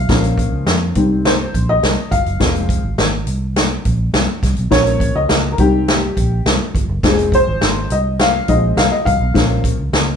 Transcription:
Already playing: F5
0.09 A#1 F3 A#3 C#4, kick, snare, closed hi-hat
0.24 closed hi-hat
0.38 kick, closed hi-hat
0.52 C#2
0.66 F2, snare, closed hi-hat
0.95 C2 D#3 G3 C4, kick, closed hi-hat
1.25 C5, snare, closed hi-hat
1.54 A#1, kick, closed hi-hat
1.69 D#5
1.83 C2, snare, closed hi-hat
2.11 G1 F5, kick, closed hi-hat
2.26 F#1, closed hi-hat
2.40 F1 F3 G#3 C4, kick, snare, closed hi-hat
2.55 closed hi-hat
2.69 kick, closed hi-hat
2.83 G#1
2.98 G#1, snare, closed hi-hat
3.27 C2, closed hi-hat
3.56 snare, closed hi-hat
3.85 A#1, kick, closed hi-hat
4.13 C2, snare, closed hi-hat
4.43 C2, kick, snare, closed hi-hat
4.56 B1, closed hi-hat
4.71 A#1 F3 A#3 C#4 C#5, kick, snare, closed hi-hat
4.87 closed hi-hat
5.00 kick, closed hi-hat
5.15 C#2 D#5
5.29 C#2, snare, closed hi-hat
5.52 A#4
5.58 C2 D#3 G3 C4 G4, kick, closed hi-hat
5.88 snare, closed hi-hat
6.17 A#1, kick, closed hi-hat
6.45 C2, snare, closed hi-hat
6.75 G1, kick, closed hi-hat
6.89 F#1
7.03 F1 F3 G#3 C4, kick, snare, closed hi-hat
7.07 G#4
7.19 closed hi-hat
7.32 C5, kick, closed hi-hat
7.47 G#1
7.61 G#1, snare, closed hi-hat
7.90 C2 D#5, closed hi-hat
8.19 F5, snare, closed hi-hat
8.48 A#1 F3 G#3 C4 D#5, kick, closed hi-hat
8.77 C2 F5, snare, closed hi-hat
8.91 D#5
9.05 C2 F5, kick, closed hi-hat
9.20 B1
9.34 A#1 F3 A#3 C#4, kick, snare, closed hi-hat
9.64 kick, closed hi-hat
9.79 C#2
9.93 C#2, snare, closed hi-hat

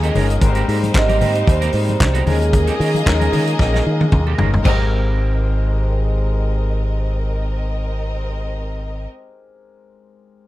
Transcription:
Already playing: D#3 G#3 A#3 C#4 D#4 F4 G#4 A#4 D#5
0.03 C#4 G#4 A#4, closed hi-hat
0.14 G1 G#3 C#4 D#4 G#4 A#4, open hi-hat, high conga, low conga
0.30 closed hi-hat
0.40 G#1 G3 G#3 A#3 C4 D#4 G4 A#4 C5, muted clean electric guitar stroke, kick, closed hi-hat, low conga
0.55 C4 G4 A#4, closed hi-hat
0.66 G#2 C4 G4 A#4, open hi-hat
0.83 closed hi-hat, high conga
0.94 G#1 G#3 C4 G4 A#4 D#5, muted clean electric guitar stroke, kick, snare, clap, muted conga
1.08 C4 G4 A#4, closed hi-hat, muted conga, high conga
1.20 G#2 C4 G4 A#4, open hi-hat, low conga
1.35 closed hi-hat
1.46 D#2 C5, muted clean electric guitar stroke, kick, closed hi-hat, muted conga
1.61 C4 G4 A#4, closed hi-hat, muted conga
1.73 G#2, open hi-hat
1.87 muted clean electric guitar stroke, closed hi-hat, high conga
1.99 C2, muted clean electric guitar stroke, kick, snare, clap, muted conga
2.13 C4 G4 A#4, closed hi-hat, muted conga
2.25 D#2 D#3 G#3 A#3 C#4 D#4 F4 G#4 A#4 D#5, open hi-hat, high conga, low conga
2.30 G#4
2.40 muted clean electric guitar stroke, closed hi-hat
2.52 muted clean electric guitar stroke, kick, closed hi-hat, muted conga, low conga
2.67 C#4 G#4 A#4, closed hi-hat, muted conga
2.79 D#3 C#4 G#4 A#4, open hi-hat
2.95 closed hi-hat, high conga
3.05 D#2 G#3 C#4 D#4 A#4, muted clean electric guitar stroke, kick, snare, clap
3.20 C#4 G#4 A#4, closed hi-hat, muted conga, high conga
3.31 D#3 C#4 G#4 A#4, open hi-hat, low conga
3.47 closed hi-hat
3.58 A#1, muted clean electric guitar stroke, kick, snare
3.73 C#4 G#4 A#4, snare, muted conga
3.87 D#3
4.00 muted clean electric guitar stroke, high tom, high conga
4.12 D#2, muted clean electric guitar stroke, kick, mid tom
4.27 C#4 G#4 A#4, muted conga
4.38 G1 G#3 C#4 D#4 G#4 A#4, floor tom, high conga, low conga
4.54 floor tom
4.62 G#1 G#3 C4 D#4 G4 A#4 C5 D#5, kick, crash, high conga
4.66 G4 A#4

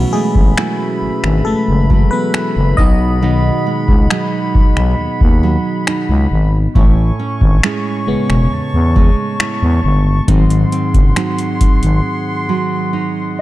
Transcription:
Already playing: B2 E3 F#3 A3 C#4 E4 F#4 B4 E5 B5
0.13 G#3 A3 G#4
0.35 A1, kick
0.57 F#3 A3 E4, finger snap
1.02 G#1
1.24 G#1, finger snap
1.45 A3 A4
1.68 F#1
1.90 F#3, kick
2.11 B3 B4
2.34 E4, finger snap
2.57 F#1
2.77 B1 B2 D#4 G#4 D#5 F#5, kick
3.22 B2 D#3 F#3 B3 D#4
3.67 G#3
3.88 C#2, kick
4.11 F#3 G#3 D#4, finger snap
4.55 B1, kick
4.77 B1, finger snap
5.21 D#2, kick
5.43 F#3
5.87 D#4, finger snap
6.09 C#2
6.32 G#1
6.75 A1 A2 E4 C#5 G#5 C#6, kick
7.20 C#4
7.41 G#1, kick
7.63 G#3 C#4 E4, finger snap
8.07 E1 C#3 G#3 B3
8.30 E1, finger snap
8.52 E2 A5
8.74 E2
8.96 G#3, kick
9.40 E4, finger snap
9.62 E2
9.84 G1
10.28 G#1 G#2 D#3 F#3 C4 D#4 G#4 F#5 C6, kick, closed hi-hat
10.50 closed hi-hat
10.72 C4, closed hi-hat
10.94 F#1, kick, closed hi-hat
11.16 F#3 C4 D#4, finger snap, closed hi-hat
11.39 closed hi-hat
11.61 G#1, kick, closed hi-hat
11.83 G#1, closed hi-hat
12.49 F#3
12.93 D#4

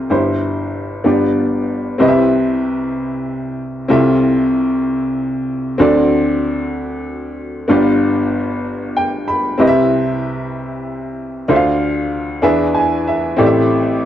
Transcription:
Already playing: C2 C3 F4 A4 C5
0.10 G1 G2 E4 G4 C5
1.04 G1 G2 B3 D4 F4 G4 D5
1.98 C2 C3 C4 E4 G4 B4 D#5
2.08 E5
3.88 C2 C3 C4 E4 F4 A4 E5
5.78 D2 D3 C4 D4 F#4 A4 D5
7.68 G1 G2 B3 D4 F4 G4 D5
8.96 G5
9.28 B5
9.58 C2 C3 C4 E4 G4 B4 D#5
9.67 E5
11.48 D2 D3 D4 F4 A4 C5 E5
11.56 F5
12.42 E2 E3 D4 E4 G#4 B4 E5
12.74 G#5
13.07 E5
13.37 A1 A2 C4 E4 G4 A4 D5
13.46 E5

